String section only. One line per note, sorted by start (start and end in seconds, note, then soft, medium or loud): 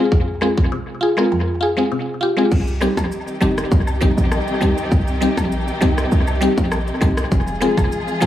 2.51 8.26 C3 medium
2.51 7.27 D#3 medium
2.51 7.27 G3 medium
2.51 7.27 D#4 medium
2.51 7.27 G4 medium
7.31 8.26 F3 medium
7.31 8.26 G#3 medium
7.31 8.26 F4 medium
7.31 8.26 G#4 medium